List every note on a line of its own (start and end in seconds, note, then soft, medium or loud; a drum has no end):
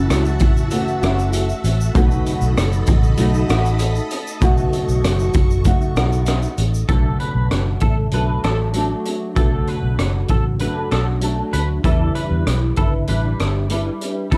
0.00 0.71 F#2 medium
0.00 0.71 C#3 medium
0.00 0.69 E3 medium
0.00 0.71 A3 loud
0.00 0.71 C#4 loud
0.00 0.72 F#4 medium
0.00 1.91 F#4 medium
0.00 1.91 E5 medium
0.00 1.91 A5 medium
0.10 0.41 C#2 medium
0.10 cross-stick medium
0.10 closed hi-hat medium
0.10 shaker medium
0.25 shaker soft
0.40 0.78 A1 medium
0.40 kick loud
0.40 closed hi-hat medium
0.40 shaker medium
0.57 shaker medium
0.71 1.02 E3 medium
0.71 1.01 A3 medium
0.71 1.00 C#4 medium
0.71 1.00 F#4 medium
0.71 closed hi-hat medium
0.71 shaker medium
0.88 shaker soft
1.01 1.52 F#1 loud
1.01 1.94 E3 soft
1.01 1.95 A3 medium
1.01 1.95 C#4 medium
1.01 1.96 F#4 medium
1.01 cross-stick loud
1.01 closed hi-hat soft
1.01 shaker medium
1.19 shaker medium
1.33 closed hi-hat medium
1.33 shaker medium
1.49 shaker soft
1.64 1.89 A1 medium
1.64 closed hi-hat medium
1.64 shaker medium
1.81 shaker medium
1.94 2.20 B1 loud
1.94 3.18 B2 medium
1.94 3.17 F#3 medium
1.94 3.18 A3 medium
1.94 3.17 D#4 medium
1.94 3.19 F#4 loud
1.94 6.85 A4 medium
1.94 6.85 D#5 medium
1.94 4.40 B5 medium
1.94 kick loud
1.94 closed hi-hat medium
1.94 shaker medium
2.11 shaker medium
2.26 closed hi-hat medium
2.26 shaker medium
2.41 2.54 B1 loud
2.41 shaker medium
2.57 2.82 F#1 loud
2.57 cross-stick loud
2.57 closed hi-hat medium
2.57 shaker medium
2.72 shaker soft
2.87 3.13 A1 medium
2.87 kick loud
2.87 closed hi-hat medium
2.87 shaker medium
3.03 shaker medium
3.17 3.43 B1 loud
3.17 3.49 F#3 medium
3.17 3.49 A3 medium
3.17 3.48 D#4 medium
3.17 3.47 F#4 medium
3.17 closed hi-hat medium
3.17 shaker medium
3.34 shaker soft
3.48 3.99 A1 loud
3.48 4.42 A3 soft
3.48 4.42 D#4 medium
3.48 4.43 F#4 medium
3.48 cross-stick loud
3.48 closed hi-hat soft
3.48 shaker soft
3.65 shaker soft
3.79 closed hi-hat medium
3.79 shaker medium
3.95 shaker soft
4.11 closed hi-hat medium
4.11 shaker soft
4.27 shaker medium
4.40 4.67 B1 loud
4.40 5.65 B2 medium
4.40 5.64 F#3 medium
4.40 5.65 A3 medium
4.40 5.65 D#4 medium
4.40 5.66 F#4 loud
4.40 6.87 C#6 medium
4.40 kick loud
4.40 closed hi-hat medium
4.40 shaker medium
4.57 shaker soft
4.73 closed hi-hat medium
4.73 shaker medium
4.88 5.01 B1 loud
4.88 shaker medium
5.03 5.28 F#1 medium
5.03 cross-stick loud
5.03 closed hi-hat medium
5.03 shaker medium
5.19 shaker medium
5.34 5.72 F#1 medium
5.34 kick loud
5.34 closed hi-hat medium
5.34 shaker medium
5.50 shaker medium
5.65 5.96 F#3 medium
5.65 5.96 A3 medium
5.65 5.95 D#4 medium
5.65 5.94 F#4 medium
5.65 kick medium
5.65 closed hi-hat medium
5.65 shaker medium
5.81 shaker soft
5.96 6.46 B1 loud
5.96 6.89 A3 medium
5.96 6.89 D#4 medium
5.96 6.89 F#4 medium
5.96 cross-stick loud
5.96 closed hi-hat soft
5.96 shaker medium
6.12 shaker medium
6.26 cross-stick medium
6.26 closed hi-hat medium
6.26 shaker medium
6.42 shaker soft
6.58 6.83 A1 medium
6.58 closed hi-hat medium
6.58 shaker medium
6.74 shaker medium
6.89 7.14 B1 medium
6.89 7.82 B2 medium
6.89 7.82 F#3 medium
6.89 7.82 A3 medium
6.89 7.82 D4 medium
6.89 7.18 A4 medium
6.89 7.80 A4 medium
6.89 kick loud
6.89 closed hi-hat medium
7.20 7.64 B4 medium
7.20 closed hi-hat soft
7.35 7.48 B1 loud
7.51 7.76 F#1 medium
7.51 cross-stick medium
7.51 closed hi-hat medium
7.80 8.07 A1 medium
7.80 8.12 A3 soft
7.80 8.13 D4 soft
7.80 8.13 A4 soft
7.80 7.96 A4 medium
7.80 kick medium
7.80 closed hi-hat medium
8.11 8.37 B1 medium
8.11 8.73 F#3 medium
8.11 8.73 A3 medium
8.11 8.75 D4 medium
8.11 8.75 A4 medium
8.11 8.43 B4 medium
8.11 closed hi-hat medium
8.44 8.93 A1 medium
8.44 8.59 A4 medium
8.44 cross-stick medium
8.44 closed hi-hat soft
8.74 9.35 F#3 medium
8.74 9.36 A3 medium
8.74 9.37 D4 medium
8.74 9.37 A4 medium
8.74 closed hi-hat medium
9.05 closed hi-hat soft
9.35 9.61 B1 medium
9.35 10.59 B2 medium
9.35 10.58 F#3 medium
9.35 10.59 A3 medium
9.35 10.60 D4 medium
9.35 9.68 A4 medium
9.35 10.60 A4 medium
9.35 kick loud
9.35 closed hi-hat medium
9.67 10.11 B4 medium
9.67 closed hi-hat soft
9.83 9.95 B1 medium
9.99 10.23 F#1 medium
9.99 cross-stick medium
9.99 closed hi-hat medium
10.28 10.66 A1 medium
10.28 10.44 A4 medium
10.28 kick medium
10.28 closed hi-hat soft
10.59 11.20 F#3 medium
10.59 11.21 A3 medium
10.59 11.22 D4 medium
10.59 11.22 A4 medium
10.59 10.90 B4 medium
10.59 closed hi-hat medium
10.91 11.41 B1 medium
10.91 11.06 A4 medium
10.91 cross-stick medium
10.91 closed hi-hat soft
11.21 11.83 F#3 medium
11.21 11.84 A3 medium
11.21 11.84 D4 medium
11.21 11.84 A4 medium
11.21 closed hi-hat medium
11.53 11.78 D2 medium
11.53 11.68 B4 medium
11.53 closed hi-hat soft
11.83 12.09 E2 medium
11.83 12.82 E3 medium
11.83 12.76 G3 medium
11.83 12.77 D4 medium
11.83 12.77 E4 medium
11.83 12.14 A4 medium
11.83 12.75 B4 medium
11.83 kick medium
11.83 closed hi-hat medium
12.15 12.59 B4 medium
12.15 closed hi-hat medium
12.31 12.43 E2 medium
12.47 12.71 B1 medium
12.47 cross-stick medium
12.47 closed hi-hat medium
12.76 13.02 G1 medium
12.76 13.07 D4 soft
12.76 13.08 E4 soft
12.76 12.92 A4 medium
12.76 13.08 B4 medium
12.76 kick medium
12.76 closed hi-hat soft
13.07 13.33 A1 medium
13.07 13.68 G3 medium
13.07 13.68 D4 medium
13.07 13.70 E4 medium
13.07 13.39 B4 medium
13.07 13.70 B4 medium
13.07 closed hi-hat medium
13.39 13.89 G1 medium
13.39 13.54 A4 medium
13.39 cross-stick medium
13.39 closed hi-hat soft
13.69 14.31 G3 medium
13.69 14.31 D4 medium
13.69 14.33 E4 medium
13.69 14.32 B4 medium
13.69 closed hi-hat medium
14.01 closed hi-hat soft
14.31 14.38 E2 medium
14.31 14.38 E3 medium
14.31 14.38 G3 medium
14.31 14.38 D4 medium
14.31 14.38 E4 medium
14.31 14.38 A4 medium
14.31 14.38 B4 medium
14.31 kick loud
14.31 closed hi-hat medium